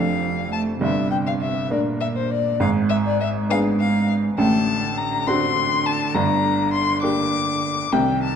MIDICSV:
0, 0, Header, 1, 4, 480
1, 0, Start_track
1, 0, Tempo, 593472
1, 660, Time_signature, 6, 3, 24, 8
1, 6758, End_track
2, 0, Start_track
2, 0, Title_t, "Violin"
2, 0, Program_c, 0, 40
2, 0, Note_on_c, 0, 77, 89
2, 420, Note_off_c, 0, 77, 0
2, 425, Note_on_c, 0, 81, 85
2, 490, Note_off_c, 0, 81, 0
2, 666, Note_on_c, 0, 76, 84
2, 892, Note_off_c, 0, 76, 0
2, 897, Note_on_c, 0, 79, 85
2, 945, Note_off_c, 0, 79, 0
2, 1024, Note_on_c, 0, 77, 80
2, 1072, Note_off_c, 0, 77, 0
2, 1144, Note_on_c, 0, 76, 77
2, 1381, Note_off_c, 0, 76, 0
2, 1392, Note_on_c, 0, 74, 90
2, 1457, Note_off_c, 0, 74, 0
2, 1623, Note_on_c, 0, 76, 91
2, 1672, Note_off_c, 0, 76, 0
2, 1754, Note_on_c, 0, 72, 79
2, 1865, Note_on_c, 0, 74, 87
2, 1877, Note_off_c, 0, 72, 0
2, 2107, Note_off_c, 0, 74, 0
2, 2110, Note_on_c, 0, 77, 85
2, 2175, Note_off_c, 0, 77, 0
2, 2341, Note_on_c, 0, 76, 96
2, 2391, Note_off_c, 0, 76, 0
2, 2481, Note_on_c, 0, 74, 85
2, 2586, Note_off_c, 0, 74, 0
2, 2591, Note_on_c, 0, 76, 95
2, 2656, Note_off_c, 0, 76, 0
2, 2834, Note_on_c, 0, 77, 106
2, 2899, Note_off_c, 0, 77, 0
2, 3075, Note_on_c, 0, 77, 98
2, 3304, Note_off_c, 0, 77, 0
2, 3548, Note_on_c, 0, 81, 101
2, 4022, Note_on_c, 0, 82, 103
2, 4034, Note_off_c, 0, 81, 0
2, 4263, Note_on_c, 0, 84, 110
2, 4275, Note_off_c, 0, 82, 0
2, 4737, Note_on_c, 0, 81, 97
2, 4750, Note_off_c, 0, 84, 0
2, 4972, Note_on_c, 0, 82, 96
2, 4984, Note_off_c, 0, 81, 0
2, 5440, Note_off_c, 0, 82, 0
2, 5445, Note_on_c, 0, 84, 94
2, 5676, Note_off_c, 0, 84, 0
2, 5680, Note_on_c, 0, 86, 104
2, 6409, Note_on_c, 0, 79, 88
2, 6421, Note_off_c, 0, 86, 0
2, 6655, Note_off_c, 0, 79, 0
2, 6659, Note_on_c, 0, 81, 80
2, 6758, Note_off_c, 0, 81, 0
2, 6758, End_track
3, 0, Start_track
3, 0, Title_t, "Grand piano"
3, 0, Program_c, 1, 0
3, 0, Note_on_c, 1, 29, 50
3, 0, Note_on_c, 1, 41, 58
3, 0, Note_on_c, 1, 62, 42
3, 0, Note_on_c, 1, 69, 42
3, 95, Control_c, 1, 64, 127
3, 626, Note_off_c, 1, 62, 0
3, 629, Note_off_c, 1, 69, 0
3, 637, Note_off_c, 1, 29, 0
3, 637, Note_off_c, 1, 41, 0
3, 655, Note_on_c, 1, 43, 66
3, 656, Note_on_c, 1, 31, 62
3, 675, Control_c, 1, 64, 0
3, 825, Control_c, 1, 64, 127
3, 1377, Note_on_c, 1, 58, 51
3, 1381, Note_on_c, 1, 62, 46
3, 1385, Note_on_c, 1, 70, 52
3, 2072, Note_off_c, 1, 58, 0
3, 2073, Note_off_c, 1, 43, 0
3, 2074, Note_off_c, 1, 31, 0
3, 2074, Note_off_c, 1, 62, 0
3, 2076, Note_off_c, 1, 70, 0
3, 2102, Note_on_c, 1, 32, 66
3, 2104, Note_on_c, 1, 44, 74
3, 2124, Control_c, 1, 64, 0
3, 2248, Control_c, 1, 64, 127
3, 2824, Note_on_c, 1, 59, 52
3, 2827, Note_on_c, 1, 62, 50
3, 2832, Note_on_c, 1, 68, 60
3, 3507, Note_off_c, 1, 32, 0
3, 3507, Note_off_c, 1, 44, 0
3, 3507, Note_off_c, 1, 59, 0
3, 3509, Note_off_c, 1, 62, 0
3, 3511, Note_off_c, 1, 68, 0
3, 3542, Note_on_c, 1, 33, 67
3, 3542, Note_on_c, 1, 45, 75
3, 3558, Control_c, 1, 64, 0
3, 3671, Control_c, 1, 64, 127
3, 4266, Note_on_c, 1, 60, 56
3, 4268, Note_on_c, 1, 62, 53
3, 4270, Note_on_c, 1, 66, 62
3, 4939, Note_off_c, 1, 33, 0
3, 4939, Note_off_c, 1, 45, 0
3, 4940, Note_off_c, 1, 60, 0
3, 4941, Note_off_c, 1, 62, 0
3, 4942, Note_off_c, 1, 66, 0
3, 4971, Note_on_c, 1, 43, 78
3, 4973, Note_on_c, 1, 31, 67
3, 4986, Control_c, 1, 64, 0
3, 5092, Control_c, 1, 64, 127
3, 5684, Note_on_c, 1, 58, 50
3, 5685, Note_on_c, 1, 62, 52
3, 5689, Note_on_c, 1, 67, 56
3, 6380, Note_off_c, 1, 58, 0
3, 6381, Note_off_c, 1, 43, 0
3, 6381, Note_off_c, 1, 62, 0
3, 6382, Note_off_c, 1, 31, 0
3, 6383, Note_off_c, 1, 67, 0
3, 6411, Note_on_c, 1, 48, 60
3, 6412, Note_on_c, 1, 36, 67
3, 6429, Control_c, 1, 64, 0
3, 6548, Control_c, 1, 64, 127
3, 6758, Note_off_c, 1, 36, 0
3, 6758, Note_off_c, 1, 48, 0
3, 6758, End_track
4, 0, Start_track
4, 0, Title_t, "Cello"
4, 0, Program_c, 2, 42
4, 0, Note_on_c, 2, 53, 74
4, 408, Note_off_c, 2, 53, 0
4, 412, Note_on_c, 2, 57, 75
4, 648, Note_off_c, 2, 57, 0
4, 653, Note_on_c, 2, 48, 60
4, 1380, Note_on_c, 2, 46, 71
4, 1392, Note_off_c, 2, 48, 0
4, 2108, Note_on_c, 2, 44, 69
4, 2120, Note_off_c, 2, 46, 0
4, 2828, Note_off_c, 2, 44, 0
4, 2832, Note_on_c, 2, 44, 82
4, 3529, Note_off_c, 2, 44, 0
4, 3544, Note_on_c, 2, 50, 72
4, 6382, Note_off_c, 2, 50, 0
4, 6418, Note_on_c, 2, 51, 65
4, 6758, Note_off_c, 2, 51, 0
4, 6758, End_track
0, 0, End_of_file